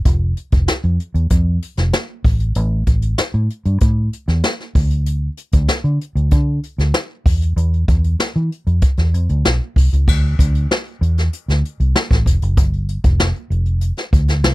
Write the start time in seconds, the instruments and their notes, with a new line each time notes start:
0.05 fingered electric bass F1, kick, closed hi-hat
0.37 closed hi-hat
0.52 fingered electric bass F1, kick, closed hi-hat
0.68 muted fingered electric bass stroke, snare, closed hi-hat
0.84 fingered electric bass F2, closed hi-hat
1.00 closed hi-hat
1.14 fingered electric bass E2, closed hi-hat
1.30 fingered electric bass F2, kick, closed hi-hat
1.62 closed hi-hat
1.77 fingered electric bass F1, snare, closed hi-hat
1.93 snare, closed hi-hat
2.25 fingered electric bass A1, kick, open hi-hat
2.40 closed hi-hat
2.55 fingered electric bass A1, closed hi-hat
2.86 fingered electric bass A1, kick, closed hi-hat
3.02 closed hi-hat
3.18 muted fingered electric bass stroke, snare, closed hi-hat
3.34 fingered electric bass A2, closed hi-hat
3.50 closed hi-hat
3.65 fingered electric bass G2, closed hi-hat
3.80 fingered electric bass A2, kick, closed hi-hat
4.13 closed hi-hat
4.28 fingered electric bass E2, snare, closed hi-hat
4.43 snare, closed hi-hat
4.60 snare
4.75 fingered electric bass D2, kick, open hi-hat
4.91 closed hi-hat
5.06 closed hi-hat
5.37 closed hi-hat
5.52 fingered electric bass D2, kick, closed hi-hat
5.68 muted fingered electric bass stroke, snare, closed hi-hat
5.84 fingered electric bass D3, closed hi-hat
6.01 closed hi-hat
6.15 fingered electric bass D2, closed hi-hat
6.31 fingered electric bass D3, kick, closed hi-hat
6.63 closed hi-hat
6.78 fingered electric bass D2, snare, closed hi-hat
6.94 snare, closed hi-hat
7.26 fingered electric bass E2, kick, open hi-hat
7.42 closed hi-hat
7.56 fingered electric bass E2, closed hi-hat
7.73 closed hi-hat
7.88 fingered electric bass E2, kick, closed hi-hat
8.04 closed hi-hat
8.19 muted fingered electric bass stroke, snare, closed hi-hat
8.36 fingered electric bass E3, closed hi-hat
8.52 closed hi-hat
8.67 fingered electric bass F2, closed hi-hat
8.82 kick, closed hi-hat
8.97 fingered electric bass E2, snare, closed hi-hat
9.14 fingered electric bass F2, closed hi-hat
9.29 fingered electric bass D2, closed hi-hat
9.45 fingered electric bass B1, snare, closed hi-hat
9.76 fingered electric bass C2, kick, open hi-hat
9.93 fingered electric bass C#2, closed hi-hat
10.08 fingered electric bass D2, kick, crash
10.39 fingered electric bass D2, kick, closed hi-hat
10.55 closed hi-hat
10.71 snare
10.87 closed hi-hat
11.01 fingered electric bass E2, closed hi-hat
11.18 snare, closed hi-hat
11.33 closed hi-hat
11.48 fingered electric bass D2, snare, closed hi-hat
11.65 closed hi-hat
11.80 fingered electric bass C2, closed hi-hat
11.96 snare
12.11 fingered electric bass A1, kick, snare, closed hi-hat
12.26 fingered electric bass F1, kick, closed hi-hat
12.42 fingered electric bass F#1, closed hi-hat
12.57 fingered electric bass G1, kick, closed hi-hat
12.73 closed hi-hat
12.89 closed hi-hat
13.04 fingered electric bass F1, kick, closed hi-hat
13.20 snare
13.36 closed hi-hat
13.50 fingered electric bass F1, closed hi-hat
13.66 closed hi-hat
13.81 closed hi-hat
13.97 snare, closed hi-hat
14.13 fingered electric bass D2, kick, closed hi-hat
14.28 snare, closed hi-hat
14.44 fingered electric bass C2, snare